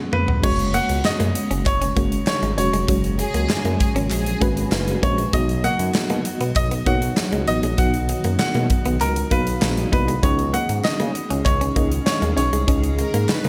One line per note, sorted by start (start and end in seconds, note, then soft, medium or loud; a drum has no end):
0.00 0.41 F#2 medium
0.00 0.41 C#3 medium
0.00 0.27 F3 medium
0.00 0.45 F#3 medium
0.00 0.41 G#3 medium
0.00 0.39 B3 medium
0.00 0.45 B3 medium
0.00 0.43 C#4 medium
0.00 0.46 G#4 medium
0.00 0.39 F#5 medium
0.13 0.26 A#3 medium
0.13 0.45 B4 medium
0.13 mid tom medium
0.28 0.41 B3 medium
0.28 floor tom medium
0.43 0.78 F#1 loud
0.43 5.29 C#3 medium
0.43 10.19 F#3 medium
0.43 1.47 G#3 medium
0.43 5.29 G#3 medium
0.43 0.56 G#3 medium
0.43 1.47 C#4 medium
0.43 1.47 F#4 medium
0.43 10.19 F#4 medium
0.43 0.75 C#5 medium
0.43 1.47 C#5 medium
0.43 kick loud
0.43 crash loud
0.59 closed hi-hat soft
0.74 0.87 A#3 medium
0.74 1.06 F#5 loud
0.74 closed hi-hat medium
0.89 1.01 C#2 loud
0.89 muted clean electric guitar stroke soft
0.89 closed hi-hat medium
1.05 1.11 F#2 soft
1.05 1.68 D#5 medium
1.05 snare loud
1.05 clap medium
1.20 1.32 F#2 loud
1.20 1.33 A#3 medium
1.20 closed hi-hat soft
1.35 muted clean electric guitar stroke soft
1.35 closed hi-hat medium
1.51 1.62 F#1 medium
1.51 1.63 C#4 medium
1.51 closed hi-hat soft
1.66 1.89 F#1 medium
1.66 2.26 C#5 loud
1.66 muted clean electric guitar stroke soft
1.66 kick loud
1.66 clap medium
1.66 closed hi-hat medium
1.82 1.94 C#4 medium
1.82 closed hi-hat medium
1.96 2.20 F#1 loud
1.96 2.48 G#3 medium
1.96 2.09 A#3 medium
1.96 2.48 C#4 medium
1.96 2.49 F#4 medium
1.96 2.49 C#5 medium
1.96 kick medium
1.96 closed hi-hat medium
2.12 closed hi-hat medium
2.27 2.56 C#5 medium
2.27 snare loud
2.27 clap medium
2.42 2.54 G#1 medium
2.42 2.55 G#3 medium
2.42 closed hi-hat soft
2.57 2.69 E1 medium
2.57 2.83 G#3 medium
2.57 2.84 C#4 medium
2.57 2.84 F#4 medium
2.57 3.15 C#5 medium
2.57 2.84 C#5 medium
2.57 muted clean electric guitar stroke soft
2.57 closed hi-hat medium
2.73 2.85 F1 medium
2.73 2.86 G#3 medium
2.73 closed hi-hat soft
2.88 3.23 F#1 loud
2.88 3.01 F#3 medium
2.88 3.92 G#3 medium
2.88 3.92 C#4 medium
2.88 3.92 F#4 medium
2.88 3.93 C#5 medium
2.88 kick loud
2.88 closed hi-hat loud
3.04 closed hi-hat soft
3.19 3.76 G#4 loud
3.19 muted clean electric guitar stroke soft
3.19 closed hi-hat medium
3.34 3.46 C#2 loud
3.34 3.47 A#3 medium
3.34 closed hi-hat medium
3.49 3.56 F#2 soft
3.49 snare loud
3.49 clap medium
3.49 tambourine medium
3.65 3.76 F#2 loud
3.65 3.78 A#3 medium
3.65 closed hi-hat soft
3.79 3.93 G#4 medium
3.79 muted clean electric guitar stroke soft
3.79 kick medium
3.79 closed hi-hat medium
3.95 4.07 G#1 medium
3.95 4.08 C#4 medium
3.95 closed hi-hat soft
4.11 4.34 A#1 medium
4.11 4.83 G#4 medium
4.11 clap medium
4.11 closed hi-hat medium
4.26 closed hi-hat medium
4.41 4.64 G#1 medium
4.41 4.93 G#3 medium
4.41 4.54 A#3 medium
4.41 4.93 C#4 medium
4.41 4.93 F#4 medium
4.41 4.94 B4 loud
4.41 kick medium
4.41 closed hi-hat medium
4.57 closed hi-hat medium
4.72 4.95 F#1 loud
4.72 muted clean electric guitar stroke soft
4.72 snare loud
4.72 clap medium
4.72 tambourine medium
4.88 closed hi-hat soft
5.02 5.26 A#1 loud
5.02 5.28 G#3 medium
5.02 5.16 A#3 medium
5.02 5.29 C#4 medium
5.02 5.29 F#4 medium
5.02 5.29 C#5 medium
5.02 5.34 C#5 medium
5.02 kick medium
5.02 closed hi-hat medium
5.18 5.31 G#3 medium
5.18 closed hi-hat soft
5.33 5.68 B1 loud
5.33 13.49 D#3 medium
5.33 5.46 G#3 medium
5.33 6.37 B3 medium
5.33 10.19 B3 medium
5.33 6.37 D#4 medium
5.33 6.37 F#4 medium
5.33 5.65 D#5 medium
5.33 6.37 D#5 medium
5.33 kick loud
5.33 closed hi-hat medium
5.49 closed hi-hat soft
5.64 5.77 A#3 medium
5.64 6.52 F#5 loud
5.64 closed hi-hat medium
5.79 5.91 F#2 loud
5.79 muted clean electric guitar stroke soft
5.79 closed hi-hat medium
5.94 6.01 B2 soft
5.94 snare loud
5.94 clap medium
5.94 tambourine medium
6.10 6.21 B2 medium
6.10 6.23 A#3 medium
6.10 closed hi-hat soft
6.25 muted clean electric guitar stroke soft
6.25 closed hi-hat medium
6.41 6.52 B1 medium
6.41 6.53 B3 medium
6.41 closed hi-hat medium
6.56 6.79 B1 medium
6.56 6.87 D#5 loud
6.56 muted clean electric guitar stroke soft
6.56 kick loud
6.56 clap medium
6.56 closed hi-hat medium
6.71 6.84 B3 medium
6.71 closed hi-hat medium
6.86 7.09 B1 medium
6.86 6.99 A#3 medium
6.86 7.38 B3 medium
6.86 7.38 D#4 medium
6.86 7.38 F#4 medium
6.86 7.39 C#5 medium
6.86 7.50 F#5 loud
6.86 kick medium
6.86 closed hi-hat medium
7.02 closed hi-hat medium
7.17 snare loud
7.17 clap medium
7.17 tambourine medium
7.32 7.44 C#2 medium
7.32 7.45 G#3 medium
7.32 closed hi-hat soft
7.47 7.59 A1 medium
7.47 7.73 B3 medium
7.47 7.74 D#4 medium
7.47 7.74 F#4 medium
7.47 7.79 D#5 loud
7.47 7.74 D#5 medium
7.47 muted clean electric guitar stroke soft
7.47 closed hi-hat medium
7.63 7.75 A#1 medium
7.63 7.76 G#3 medium
7.63 closed hi-hat soft
7.78 8.13 B1 loud
7.78 7.91 F#3 medium
7.78 8.82 B3 medium
7.78 8.82 D#4 medium
7.78 8.82 F#4 medium
7.78 8.82 D#5 medium
7.78 8.38 F#5 loud
7.78 kick loud
7.78 closed hi-hat medium
7.94 closed hi-hat soft
8.09 muted clean electric guitar stroke soft
8.09 closed hi-hat medium
8.24 8.36 F#2 medium
8.24 8.37 A#3 medium
8.24 closed hi-hat medium
8.39 8.46 B2 soft
8.39 9.02 F#5 medium
8.39 snare loud
8.39 clap medium
8.39 tambourine medium
8.54 8.66 B2 loud
8.54 8.68 A#3 medium
8.54 closed hi-hat soft
8.70 muted clean electric guitar stroke soft
8.70 kick medium
8.70 closed hi-hat medium
8.85 8.97 B1 medium
8.85 8.98 B3 medium
8.85 closed hi-hat medium
9.01 9.24 C#2 medium
9.01 9.32 A#4 medium
9.01 clap medium
9.01 closed hi-hat medium
9.16 closed hi-hat medium
9.31 9.54 B1 medium
9.31 9.44 A#3 medium
9.31 9.83 B3 medium
9.31 9.83 D#4 medium
9.31 9.83 F#4 medium
9.31 9.91 B4 loud
9.31 9.84 F5 medium
9.31 kick medium
9.31 closed hi-hat medium
9.47 closed hi-hat medium
9.62 9.85 A#1 medium
9.62 muted clean electric guitar stroke soft
9.62 snare loud
9.62 clap medium
9.62 tambourine medium
9.77 closed hi-hat soft
9.92 10.16 C2 medium
9.92 10.05 A#3 medium
9.92 10.18 B3 medium
9.92 10.18 D#4 medium
9.92 10.18 F#4 medium
9.92 10.24 B4 medium
9.92 10.19 D#5 medium
9.92 kick medium
9.92 closed hi-hat medium
10.08 10.21 G#3 medium
10.08 closed hi-hat soft
10.23 10.58 C#2 loud
10.23 10.36 G#3 medium
10.23 13.49 G#3 medium
10.23 11.27 C#4 medium
10.23 13.49 C#4 medium
10.23 11.27 D#4 medium
10.23 11.27 G#4 medium
10.23 13.49 G#4 medium
10.23 10.55 C#5 medium
10.23 11.27 D#5 medium
10.23 kick loud
10.23 closed hi-hat medium
10.39 closed hi-hat soft
10.54 10.67 A#3 medium
10.54 10.85 F#5 medium
10.54 closed hi-hat medium
10.69 10.81 G#2 medium
10.69 muted clean electric guitar stroke soft
10.69 closed hi-hat medium
10.84 10.91 C#3 soft
10.84 11.47 D#5 medium
10.84 snare loud
10.84 clap medium
10.84 tambourine medium
11.00 11.11 C#3 loud
11.00 11.12 A#3 medium
11.00 closed hi-hat soft
11.15 muted clean electric guitar stroke soft
11.15 closed hi-hat medium
11.30 11.42 C#2 medium
11.30 11.43 C#4 medium
11.30 closed hi-hat soft
11.45 11.69 C#2 loud
11.45 12.05 C#5 medium
11.45 muted clean electric guitar stroke soft
11.45 kick loud
11.45 clap medium
11.45 closed hi-hat medium
11.61 11.74 C#4 medium
11.61 closed hi-hat medium
11.76 11.99 C#2 medium
11.76 11.89 A#3 medium
11.76 12.28 C#4 medium
11.76 12.28 D#4 medium
11.76 12.28 G#4 medium
11.76 12.28 D#5 medium
11.76 kick medium
11.76 closed hi-hat medium
11.92 closed hi-hat medium
12.06 12.35 C#5 medium
12.06 snare loud
12.06 clap medium
12.06 tambourine medium
12.22 12.33 D#2 medium
12.22 12.35 G#3 medium
12.22 closed hi-hat soft
12.37 12.49 B1 medium
12.37 12.63 C#4 medium
12.37 12.63 D#4 medium
12.37 12.63 G#4 medium
12.37 12.94 C#5 medium
12.37 12.64 D#5 medium
12.37 muted clean electric guitar stroke soft
12.37 closed hi-hat medium
12.53 12.64 C2 medium
12.53 12.66 G#3 medium
12.53 closed hi-hat soft
12.67 13.02 C#2 loud
12.67 13.49 C#4 medium
12.67 12.81 C#4 medium
12.67 13.49 D#4 medium
12.67 13.49 G#4 medium
12.67 13.49 D#5 medium
12.67 kick loud
12.67 closed hi-hat medium
12.84 closed hi-hat soft
12.99 13.27 A#4 medium
12.99 muted clean electric guitar stroke soft
12.99 closed hi-hat medium
13.14 13.25 G#2 loud
13.14 13.27 A#3 medium
13.14 closed hi-hat medium
13.29 13.35 C#3 soft
13.29 13.49 B4 medium
13.29 snare loud
13.29 clap medium
13.29 tambourine medium
13.44 13.49 C#3 loud
13.44 13.49 A#3 medium
13.44 closed hi-hat soft